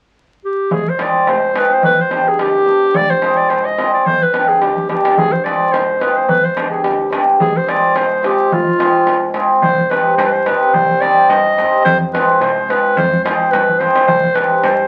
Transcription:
0.45 clarinet G4
0.71 fm bass F1, clarinet G#4, darbuka dum
0.87 clarinet C5, darbuka tek
0.98 hammered dulcimer G#3 C4 F4 G#4, darbuka tek
1.02 clarinet D5
1.27 fm bass F1, clarinet C5, darbuka tek
1.42 darbuka tek
1.53 hammered dulcimer G#3 C4 F4 G#4, darbuka tek
1.57 clarinet B4
1.71 clarinet C5, darbuka tek
1.83 fm bass G1, clarinet B4, darbuka dum
1.99 clarinet C5, darbuka tek
2.09 hammered dulcimer G3 B3 D4 G4, darbuka tek
2.29 clarinet G#4
2.39 fm bass D2, clarinet G4, darbuka tek
2.55 darbuka tek
2.65 hammered dulcimer G3 B3 D4 G4
2.82 darbuka tek
2.94 fm bass F1, clarinet D5, darbuka dum
3.10 clarinet C5, darbuka tek
3.21 hammered dulcimer G#3 C4 F4 G#4, darbuka tek
3.37 clarinet D5
3.50 fm bass C2, clarinet C5, darbuka tek
3.65 clarinet D#5, darbuka tek
3.77 hammered dulcimer G#3 C4 F4 G#4, darbuka tek
3.94 clarinet D5, darbuka tek
4.06 fm bass G1, clarinet C5, darbuka dum
4.23 clarinet B4
4.32 hammered dulcimer G3 B3 D4 G4, darbuka tek
4.49 clarinet G#4, darbuka tek
4.61 fm bass D2, clarinet G4, darbuka tek
4.77 darbuka dum
4.88 hammered dulcimer G3 B3 D4 G4, clarinet G4, darbuka tek
5.05 darbuka tek
5.18 fm bass F1, clarinet G#4, darbuka dum
5.33 clarinet C5, darbuka tek
5.44 hammered dulcimer G#3 C4 F4 G#4, clarinet D5, darbuka tek
5.73 fm bass C2, clarinet C5, darbuka tek
5.90 darbuka tek
5.99 hammered dulcimer G#3 C4 F4 G#4, clarinet B4, darbuka tek
6.17 clarinet C5, darbuka tek
6.28 fm bass G1, clarinet B4, darbuka dum
6.44 clarinet C5, darbuka tek
6.56 hammered dulcimer G3 B3 D4 G4, darbuka tek
6.71 clarinet G#4
6.84 fm bass D2, clarinet G4, darbuka tek
7.01 darbuka tek
7.10 hammered dulcimer G3 B3 D4 G4, darbuka tek
7.28 darbuka tek
7.40 fm bass F1, clarinet G#4, darbuka dum
7.55 clarinet C5, darbuka tek
7.66 hammered dulcimer G#3 C4 F4 G#4, darbuka tek
7.70 clarinet D5
7.96 fm bass C2, clarinet C5, darbuka tek
8.12 darbuka tek
8.22 hammered dulcimer G#3 C4 F4 G#4, clarinet G4, darbuka tek
8.40 darbuka tek
8.52 fm bass F1, clarinet F4, darbuka dum
8.68 darbuka tek
8.78 hammered dulcimer G#3 C4 F4 G#4, darbuka tek
8.95 darbuka tek
9.07 fm bass C2, darbuka tek
9.22 darbuka tek
9.34 hammered dulcimer G#3 C4 F4 G#4, darbuka tek
9.50 darbuka tek
9.61 fm bass C2, clarinet C5, darbuka dum
9.79 darbuka tek
9.90 hammered dulcimer G3 C4 D#4 G4, clarinet B4, darbuka tek
10.17 fm bass G2, clarinet C5, darbuka tek
10.26 clarinet B4
10.32 clarinet C5
10.45 hammered dulcimer G3 C4 D#4 G4, clarinet B4, darbuka tek
10.74 fm bass C2, clarinet C5, darbuka dum
10.90 darbuka tek
11.01 hammered dulcimer G3 C4 D#4 G4, clarinet D5, darbuka tek
11.18 darbuka tek
11.29 fm bass G2, clarinet D#5, darbuka tek
11.57 hammered dulcimer G3 C4 D#4 G4, darbuka tek
11.85 fm bass F2, clarinet C5, darbuka dum
12.02 darbuka tek
12.12 hammered dulcimer G#3 C4 F4 G#4, clarinet B4, darbuka tek
12.30 darbuka tek
12.41 fm bass C2, clarinet C5, darbuka tek
12.68 hammered dulcimer G#3 C4 F4 G#4, clarinet B4, darbuka tek
12.97 fm bass F2, clarinet C5, darbuka dum
13.14 darbuka tek
13.24 hammered dulcimer G#3 C4 F4 G#4, clarinet C5, darbuka tek
13.41 darbuka tek
13.51 fm bass G2, clarinet B4, darbuka tek
13.69 darbuka dum
13.79 hammered dulcimer G#3 C4 F4 G#4, clarinet C5, darbuka tek
13.95 darbuka tek
14.07 fm bass C2, clarinet C5, darbuka dum
14.24 darbuka tek
14.35 hammered dulcimer G3 C4 D#4 G4, clarinet B4, darbuka tek
14.51 darbuka tek
14.63 fm bass G2, clarinet C5, darbuka tek

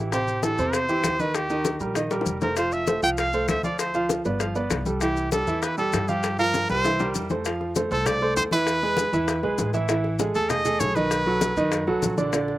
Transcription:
Already playing: upright bass A1, grand piano E3 E4
0.00 grand piano G4
0.12 grand piano C3 C4 C5, trumpet G4, high bongo, high conga, maracas
0.28 high conga, maracas
0.43 grand piano E3 E4 G4, trumpet A4, high bongo, high conga, maracas
0.58 upright bass E2, grand piano C3 C4 C5, high conga, maracas
0.73 trumpet C5, high bongo, high conga, maracas
0.89 grand piano E3 E4 G4, high conga, maracas
1.04 upright bass D#2, high bongo, low bongo, high conga, maracas
1.19 grand piano D#3 D#4 D#5, trumpet B4, high conga, maracas
1.34 trumpet G4, high bongo, high conga, maracas
1.50 grand piano D#3 D#4 D#5, high bongo, high conga, maracas
1.65 high bongo, high conga, maracas
1.80 upright bass A#1, grand piano G3 G4 A#4, high bongo, high conga, maracas
1.95 grand piano D#3 D#4 D#5, high bongo, high conga, maracas
2.11 grand piano G3 G4 A#4, high bongo, high conga, maracas
2.21 low bongo
2.26 upright bass F1, high conga, maracas
2.41 grand piano A3 A4 C5, trumpet A#4, low bongo, high conga, maracas
2.56 grand piano F3 F4 F5, trumpet C5, high bongo, high conga, maracas
2.72 trumpet E5, high conga, maracas
2.87 grand piano A3 A4 C5, high bongo, high conga, maracas
3.03 upright bass C2, grand piano F3 F4 F5, trumpet G5, high conga, maracas
3.18 trumpet F5, high bongo, high conga, maracas
3.33 grand piano A3 A4 C5, high conga, maracas
3.48 upright bass D2, trumpet E5, high bongo, low bongo, high conga, maracas
3.63 grand piano F3 F4 F5, trumpet D5, high conga, maracas
3.79 trumpet C5, high bongo, high conga, maracas
3.94 grand piano F3 F4 F5, high bongo, high conga, maracas
4.09 high bongo, high conga, maracas
4.25 upright bass G1, grand piano B3 B4 D5, high bongo, high conga, maracas
4.40 grand piano F3 F4 F5, high bongo, high conga, maracas
4.55 grand piano B3 B4 D5, high conga, maracas
4.70 upright bass C2, high bongo, low bongo, high conga, maracas
4.86 grand piano G3 G4 A4, high bongo, high conga, maracas
5.01 grand piano E3 E4 E5, trumpet G4, high bongo, high conga, maracas
5.17 high conga, maracas
5.32 grand piano G3 G4 A4, trumpet A4, high bongo, high conga, maracas
5.47 upright bass E2, grand piano E3 E4 E5, high conga, maracas
5.62 trumpet B4, high bongo, high conga, maracas
5.78 grand piano G3 G4 A4, trumpet A4, high conga, maracas
5.93 upright bass G2, high bongo, low bongo, high conga, maracas
6.08 grand piano F3 F4 F5, trumpet G4, high conga, maracas
6.23 high bongo, high conga, maracas
6.39 grand piano F3 F4 F5, trumpet A#4, high bongo, high conga, maracas
6.54 high bongo, high conga, maracas
6.69 upright bass C2, grand piano G3 G4 A#4, trumpet C5, high bongo, high conga, maracas
6.84 grand piano E3 E4 E5, high bongo, high conga, maracas
6.99 grand piano G3 G4 A#4, low bongo, high conga, maracas
7.15 upright bass F2, low bongo, high conga, maracas
7.30 grand piano A3 A4 C5, low bongo, high conga, maracas
7.45 grand piano F3 F4 F5, high bongo, high conga, maracas
7.61 high bongo, high conga
7.76 grand piano A3 A4 C5, high bongo, high conga, maracas
7.91 upright bass C2, grand piano A3 A4 C5, trumpet A4, high conga, maracas
8.06 trumpet D5, high bongo, high conga, low conga, maracas
8.21 grand piano A3 A4 C5, high bongo, high conga
8.36 upright bass E2, trumpet C5, high bongo, low bongo, high conga, maracas
8.51 grand piano E3 E4 E5, trumpet B4, high bongo, high conga, maracas
8.67 high bongo, high conga, maracas
8.82 grand piano G#3 G#4 B4, high bongo, high conga
8.97 high bongo, high conga, maracas
9.12 upright bass E2, grand piano E3 E4 E5, high conga, maracas
9.28 high bongo, high conga, maracas
9.43 upright bass B1, grand piano G#3 G#4 B4, high bongo, high conga
9.58 upright bass A1, high bongo, low bongo, high conga, maracas
9.73 grand piano E3 E4 E5, high bongo, high conga, maracas
9.89 grand piano E3 E4 E5, high bongo, high conga, maracas
10.04 high bongo, high conga
10.19 grand piano G#3 G#4 A4, high bongo, high conga, maracas
10.35 upright bass E2, grand piano A3 G#4 A4, trumpet A4, high conga, maracas
10.50 trumpet D#5, high bongo, high conga, low conga, maracas
10.65 grand piano A3 G#4 A4, high bongo, high conga, low conga, maracas
10.80 upright bass B1, trumpet C#5, high bongo, low bongo, high conga, maracas
10.95 grand piano D#3 D#4 D#5, trumpet B4, high bongo, high conga, maracas
11.11 high bongo, high conga, maracas
11.26 grand piano F#3 F#4 A4, high bongo, high conga
11.41 high bongo, high conga, maracas
11.57 upright bass F#2, grand piano D#3 D#4 D#5, high conga, maracas
11.72 high bongo, high conga, maracas
11.87 upright bass B1, grand piano F#3 F#4 A4, high bongo, high conga
12.02 upright bass A#1, high bongo, low bongo, high conga, maracas
12.17 grand piano D3 D4 D5, high bongo, high conga, maracas
12.33 grand piano D3 D4 D5, high bongo, high conga, maracas
12.48 high bongo, high conga

